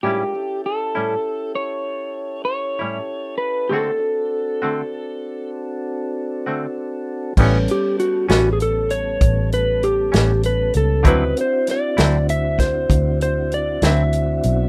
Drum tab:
CC |------------|------------|x-----------|------------|
HH |------------|------------|-xxxxxxxxxxx|xxxxxxxxxxxx|
SD |------------|------------|---o-----o--|--oo-o---o--|
BD |------------|------------|o-----o-----|o----oo-----|